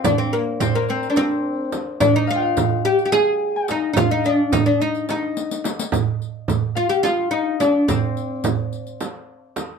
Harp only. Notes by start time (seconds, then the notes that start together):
Already playing: A#4 C5 F5 G5
0.04 D5
0.61 C5
0.75 A#4
0.89 C5
1.11 D5
1.18 C5
2.00 D5
2.14 D#5
2.27 F5
2.36 G5
2.42 F5
2.85 G5
3.14 G#5
3.56 F5
3.97 F5
4.10 D#5
4.25 D5
4.52 D#5
4.80 D#5
5.09 D#5
6.75 F5
7.04 F5
7.33 D#5
7.60 D5
7.88 C5